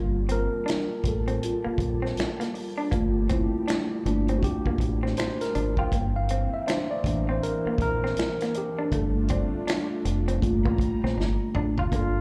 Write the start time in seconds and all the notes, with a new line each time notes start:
Already playing: G1 F3 G3 A#3 F4 G4 A5
0.29 C4 A#4, closed hi-hat
0.53 muted fingered electric bass stroke
0.66 D4, finger snap, snare, closed hi-hat
1.04 A1 A4, muted clean electric guitar stroke, kick, closed hi-hat
1.28 C4, closed hi-hat
1.43 F4, closed hi-hat
1.65 A#3, muted fingered electric bass stroke
1.78 A#1, muted clean electric guitar stroke, kick, closed hi-hat
2.02 C4, snare
2.17 finger snap, snare, closed hi-hat
2.40 A#3, snare, closed hi-hat
2.54 muted clean electric guitar stroke, open hi-hat
2.78 D4
2.91 G1 A3 A#3 F4, kick, closed hi-hat
3.29 C4 E4, kick, closed hi-hat
3.54 muted fingered electric bass stroke
3.68 D4, finger snap, snare, closed hi-hat
4.05 G1 A3 A#3 D4 F4, muted clean electric guitar stroke, closed hi-hat
4.28 C4, closed hi-hat
4.38 F#4
4.43 G4, kick, closed hi-hat
4.66 A#3, muted fingered electric bass stroke, kick
4.78 A1, muted clean electric guitar stroke, kick, closed hi-hat
5.03 C4, snare
5.17 C5, finger snap, muted clean electric guitar stroke, snare, closed hi-hat
5.41 A#4, snare, closed hi-hat
5.55 G#1 D4, closed hi-hat
5.77 F4 G5, kick
5.92 G1 E3 A#3 C4, kick, closed hi-hat
6.16 F5
6.29 C4, closed hi-hat
6.53 E5, muted fingered electric bass stroke
6.67 D4 C5, finger snap, snare, closed hi-hat
6.91 D5
7.04 A1 E3 A#3 D4, muted clean electric guitar stroke, kick, closed hi-hat
7.29 C4 C5
7.43 A#4, closed hi-hat
7.66 A#3, muted fingered electric bass stroke
7.78 A#1 A#4, muted clean electric guitar stroke, kick, closed hi-hat
8.04 C4, snare
8.17 finger snap, snare, closed hi-hat
8.40 A#3, snare, closed hi-hat
8.54 G4, muted clean electric guitar stroke, closed hi-hat
8.79 D4
8.92 G1 G3 A3 D4 F4 A4, kick, closed hi-hat
9.28 C4 D5, kick, closed hi-hat
9.54 muted fingered electric bass stroke
9.67 D4, finger snap, snare, closed hi-hat
10.05 F1, muted clean electric guitar stroke, closed hi-hat
10.28 C4, closed hi-hat
10.42 G1 G3 A3 A#3 F4 A#5, kick, closed hi-hat
10.65 A1 A#3, kick
10.78 muted clean electric guitar stroke, kick, closed hi-hat
11.03 A#1 C4, snare
11.17 G1, muted clean electric guitar stroke, snare
11.55 A1 D4, mid tom
11.78 G1 F4, floor tom
11.92 G1 A#3 D4 F4 A4, kick, closed hi-hat